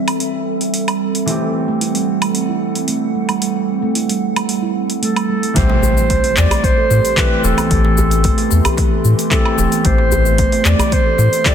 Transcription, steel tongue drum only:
1.68 1.80 A3 medium
1.81 1.89 E4 medium
1.95 2.07 G3 medium
2.21 2.47 G3 medium
2.49 2.87 E4 medium
2.88 3.02 A3 medium
3.15 3.28 G3 medium
3.29 3.81 G3 medium
3.82 3.95 A3 medium
3.95 4.03 E4 medium
4.09 4.22 G3 medium
4.36 4.61 G3 medium
4.62 5.01 E4 medium
5.02 5.16 A3 medium
5.29 5.42 G3 medium
5.43 5.56 G3 medium
5.56 5.64 A3 medium
5.70 5.81 A3 medium
5.83 5.96 A3 medium
6.09 6.23 A3 medium
6.78 7.16 A4 medium
7.17 7.30 A3 medium
7.44 7.57 E3 loud
7.58 7.70 B3 medium
7.70 7.78 A3 medium
7.84 7.96 A3 medium
8.24 8.38 A3 medium
8.92 9.30 A4 medium
9.31 9.45 A3 medium
9.58 9.71 E3 loud
9.72 9.84 B3 medium
9.99 10.11 A3 medium
10.12 10.25 A3 medium
10.39 10.52 A3 medium
11.06 11.44 A4 medium
11.46 11.55 A3 medium

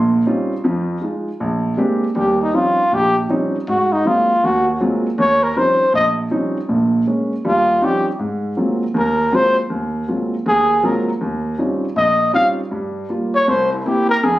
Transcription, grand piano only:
0.00 0.21 A#1 medium
0.00 0.21 A#2 medium
0.00 0.60 C6 medium
0.26 0.52 G3 medium
0.26 0.52 C4 medium
0.26 0.52 C#4 medium
0.26 0.52 D#4 medium
0.26 0.52 F4 medium
0.64 0.97 F2 medium
0.64 0.97 F3 medium
1.02 1.27 G#3 medium
1.02 1.28 D#4 soft
1.02 1.28 F4 medium
1.40 1.73 A#1 medium
1.77 2.03 G#3 medium
1.77 2.03 A#3 medium
1.77 2.03 C4 medium
1.77 2.03 D4 medium
1.77 2.04 G4 medium
2.15 2.48 D#2 medium
2.15 2.48 G3 medium
2.54 2.79 F3 soft
2.54 2.79 G3 soft
2.54 2.79 C4 soft
2.54 2.79 C#4 soft
2.54 2.79 D#4 soft
2.92 3.24 A#1 medium
3.29 3.55 F3 medium
3.29 3.55 G3 medium
3.29 3.55 C4 medium
3.29 3.55 C#4 medium
3.29 3.55 D#4 medium
3.68 4.00 G#2 medium
4.05 4.30 F#3 soft
4.05 4.30 G#3 soft
4.05 4.31 A#3 soft
4.05 4.30 C4 soft
4.05 4.31 F4 medium
4.44 4.75 D#2 medium
4.80 5.06 F#3 medium
4.80 5.06 G#3 medium
4.80 5.06 A#3 medium
4.80 5.06 C4 medium
4.80 5.06 F4 medium
5.18 5.50 D#2 medium
5.56 5.81 F3 medium
5.56 5.81 G3 soft
5.56 5.81 C4 soft
5.56 5.81 C#4 soft
5.56 5.82 D#4 medium
5.93 6.26 A#1 medium
6.31 6.56 F3 medium
6.31 6.56 G3 medium
6.31 6.56 C4 medium
6.31 6.57 C#4 medium
6.31 6.57 D#4 medium
6.69 7.01 A#1 medium
6.69 7.01 A#2 medium
7.07 7.32 G#3 medium
7.07 7.32 A#3 soft
7.07 7.32 C#4 soft
7.45 7.77 D#2 medium
7.45 7.77 G3 medium
7.81 8.07 F3 medium
7.81 8.07 G3 medium
7.81 8.07 C4 soft
7.81 8.07 C#4 medium
7.81 8.07 D#4 medium
8.19 8.52 G#2 medium
8.57 8.82 F#3 soft
8.57 8.82 G#3 soft
8.57 8.82 A#3 soft
8.57 8.82 C4 soft
8.57 8.83 F4 soft
8.94 9.27 D#2 medium
9.32 9.58 F#3 medium
9.32 9.57 G#3 medium
9.32 9.58 A#3 medium
9.32 9.58 C4 medium
9.32 9.58 F4 medium
9.70 10.02 D#2 medium
10.08 10.33 F#3 soft
10.08 10.33 G#3 soft
10.08 10.33 A#3 soft
10.08 10.33 C4 soft
10.08 10.33 F4 medium
10.46 10.78 D#2 medium
10.83 11.09 F#3 medium
10.83 11.08 G#3 medium
10.83 11.08 A#3 medium
10.83 11.09 C4 medium
10.83 11.09 F4 medium
11.21 11.53 D#2 medium
11.58 11.84 G3 soft
11.58 11.84 C4 soft
11.58 11.84 C#4 soft
11.58 11.84 D#4 soft
11.58 11.84 F4 soft
11.96 12.28 A#1 medium
12.33 12.59 G3 medium
12.33 12.59 C4 medium
12.33 12.59 C#4 medium
12.33 12.59 D#4 medium
12.33 12.59 F4 medium
12.71 13.04 G2 medium
12.71 13.04 G3 medium
13.09 13.35 G3 soft
13.09 13.35 A#3 soft
13.09 13.35 F4 medium
13.47 13.80 C2 medium
13.85 14.11 A#3 medium
13.85 14.11 C4 medium
13.85 14.11 E4 medium
14.23 14.39 F2 medium

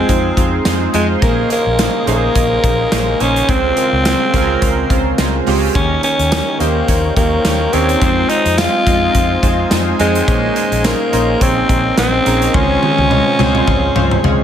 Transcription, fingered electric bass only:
0.09 0.29 F2 loud
0.37 0.58 F2 loud
0.66 0.86 F2 loud
0.94 1.14 F2 loud
1.22 1.43 A#1 loud
1.66 1.87 A#1 loud
2.07 2.27 A#1 loud
2.36 2.56 A#1 loud
2.64 2.84 A#1 loud
2.92 3.13 A#1 loud
3.21 3.41 A#1 medium
3.49 3.69 C#2 loud
3.92 4.13 C#2 loud
4.34 4.54 C#2 loud
4.62 4.82 C#2 loud
4.90 5.11 C#2 loud
5.19 5.39 C#2 loud
5.47 5.67 C#2 loud
5.75 5.96 D#2 loud
6.19 6.39 D#2 loud
6.60 6.80 D#2 loud
6.88 7.09 D#2 loud
7.16 7.37 D#2 loud
7.45 7.65 D#2 loud
7.73 7.94 D#2 medium
8.02 8.22 F2 loud
8.45 8.66 F2 loud
8.87 9.07 F2 loud
9.15 9.35 F2 loud
9.43 9.63 F2 loud
9.71 9.92 F2 loud
10.00 10.20 F2 loud
10.28 10.48 A#1 loud
10.72 10.92 A#1 loud
11.13 11.33 A#1 loud
11.41 11.62 A#1 loud
11.69 11.90 A#1 loud
11.98 12.18 A#1 loud
12.26 12.47 A#1 loud
12.54 12.75 C#2 loud
12.98 13.19 C#2 loud
13.39 13.60 C#2 loud
13.68 13.88 C#2 loud
13.96 14.16 C#2 loud
14.24 14.44 C#2 loud

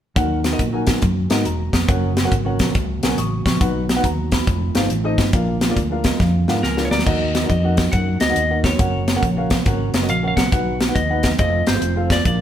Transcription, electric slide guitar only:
6.63 6.85 A#4 medium
6.85 6.91 C#5 medium
6.91 7.06 D5 medium
7.06 7.48 D#5 medium
7.49 7.91 D#5 medium
7.92 8.18 F#5 medium
8.21 8.64 D#5 loud
8.65 10.14 C#5 medium
10.10 10.26 F5 medium
10.28 10.36 F5 medium
10.37 10.97 F#5 medium
10.95 11.38 D#5 medium
11.39 11.68 D#5 medium
11.68 12.12 C5 medium
12.12 12.25 D5 medium
12.27 12.41 D5 medium

